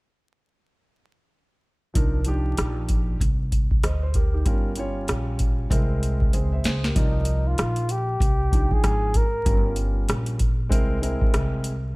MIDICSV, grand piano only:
0, 0, Header, 1, 2, 480
1, 0, Start_track
1, 0, Tempo, 625000
1, 1504, Time_signature, 4, 2, 24, 8
1, 9183, End_track
2, 0, Start_track
2, 0, Title_t, "Grand piano"
2, 0, Program_c, 0, 0
2, 1488, Note_on_c, 0, 53, 65
2, 1495, Note_on_c, 0, 62, 64
2, 1504, Note_on_c, 0, 63, 65
2, 1509, Note_on_c, 0, 70, 75
2, 1682, Note_off_c, 0, 53, 0
2, 1686, Note_off_c, 0, 62, 0
2, 1690, Note_off_c, 0, 63, 0
2, 1693, Note_off_c, 0, 70, 0
2, 1731, Note_on_c, 0, 53, 66
2, 1738, Note_on_c, 0, 62, 65
2, 1743, Note_on_c, 0, 63, 62
2, 1752, Note_on_c, 0, 67, 75
2, 2430, Note_off_c, 0, 53, 0
2, 2434, Note_off_c, 0, 62, 0
2, 2436, Note_off_c, 0, 63, 0
2, 2441, Note_off_c, 0, 67, 0
2, 2944, Note_on_c, 0, 75, 55
2, 2950, Note_on_c, 0, 72, 49
2, 3082, Note_off_c, 0, 72, 0
2, 3083, Note_off_c, 0, 75, 0
2, 3094, Note_on_c, 0, 72, 61
2, 3181, Note_off_c, 0, 72, 0
2, 3190, Note_on_c, 0, 70, 62
2, 3192, Note_on_c, 0, 67, 51
2, 3321, Note_off_c, 0, 67, 0
2, 3326, Note_off_c, 0, 70, 0
2, 3333, Note_on_c, 0, 67, 54
2, 3337, Note_on_c, 0, 63, 46
2, 3419, Note_on_c, 0, 55, 73
2, 3424, Note_on_c, 0, 61, 63
2, 3432, Note_on_c, 0, 65, 62
2, 3439, Note_on_c, 0, 70, 76
2, 3559, Note_off_c, 0, 67, 0
2, 3562, Note_off_c, 0, 63, 0
2, 3608, Note_off_c, 0, 55, 0
2, 3610, Note_off_c, 0, 61, 0
2, 3614, Note_off_c, 0, 65, 0
2, 3618, Note_off_c, 0, 70, 0
2, 3662, Note_on_c, 0, 55, 69
2, 3666, Note_on_c, 0, 61, 67
2, 3673, Note_on_c, 0, 65, 66
2, 3680, Note_on_c, 0, 73, 75
2, 4355, Note_off_c, 0, 55, 0
2, 4357, Note_off_c, 0, 61, 0
2, 4361, Note_off_c, 0, 65, 0
2, 4365, Note_off_c, 0, 73, 0
2, 4378, Note_on_c, 0, 56, 76
2, 4383, Note_on_c, 0, 60, 67
2, 4389, Note_on_c, 0, 64, 70
2, 4394, Note_on_c, 0, 70, 79
2, 4863, Note_on_c, 0, 72, 55
2, 4867, Note_on_c, 0, 68, 50
2, 4869, Note_off_c, 0, 70, 0
2, 5002, Note_off_c, 0, 72, 0
2, 5005, Note_off_c, 0, 68, 0
2, 5010, Note_on_c, 0, 76, 62
2, 5017, Note_on_c, 0, 72, 54
2, 5098, Note_off_c, 0, 72, 0
2, 5099, Note_off_c, 0, 76, 0
2, 5110, Note_on_c, 0, 72, 64
2, 5116, Note_on_c, 0, 68, 54
2, 5159, Note_off_c, 0, 56, 0
2, 5162, Note_off_c, 0, 60, 0
2, 5165, Note_off_c, 0, 64, 0
2, 5246, Note_off_c, 0, 72, 0
2, 5249, Note_off_c, 0, 68, 0
2, 5252, Note_on_c, 0, 70, 54
2, 5259, Note_on_c, 0, 67, 47
2, 5336, Note_on_c, 0, 53, 61
2, 5344, Note_off_c, 0, 70, 0
2, 5345, Note_on_c, 0, 74, 59
2, 5350, Note_on_c, 0, 63, 57
2, 5356, Note_on_c, 0, 70, 71
2, 5483, Note_off_c, 0, 67, 0
2, 6032, Note_off_c, 0, 53, 0
2, 6037, Note_off_c, 0, 74, 0
2, 6039, Note_off_c, 0, 63, 0
2, 6043, Note_off_c, 0, 70, 0
2, 6539, Note_on_c, 0, 53, 66
2, 6540, Note_on_c, 0, 62, 60
2, 6549, Note_on_c, 0, 63, 60
2, 6556, Note_on_c, 0, 79, 69
2, 7062, Note_off_c, 0, 53, 0
2, 7063, Note_off_c, 0, 62, 0
2, 7068, Note_off_c, 0, 63, 0
2, 7071, Note_off_c, 0, 79, 0
2, 7258, Note_on_c, 0, 55, 65
2, 7264, Note_on_c, 0, 61, 61
2, 7268, Note_on_c, 0, 65, 58
2, 7274, Note_on_c, 0, 70, 69
2, 7953, Note_off_c, 0, 55, 0
2, 7956, Note_off_c, 0, 61, 0
2, 7959, Note_off_c, 0, 65, 0
2, 7962, Note_off_c, 0, 70, 0
2, 8213, Note_on_c, 0, 56, 86
2, 8220, Note_on_c, 0, 60, 77
2, 8226, Note_on_c, 0, 64, 76
2, 8232, Note_on_c, 0, 70, 93
2, 8421, Note_off_c, 0, 56, 0
2, 8425, Note_off_c, 0, 60, 0
2, 8427, Note_off_c, 0, 64, 0
2, 8430, Note_off_c, 0, 70, 0
2, 8456, Note_on_c, 0, 56, 76
2, 8465, Note_on_c, 0, 60, 72
2, 8470, Note_on_c, 0, 64, 75
2, 8474, Note_on_c, 0, 70, 90
2, 8981, Note_off_c, 0, 56, 0
2, 8986, Note_off_c, 0, 60, 0
2, 8988, Note_off_c, 0, 64, 0
2, 8990, Note_off_c, 0, 70, 0
2, 9183, End_track
0, 0, End_of_file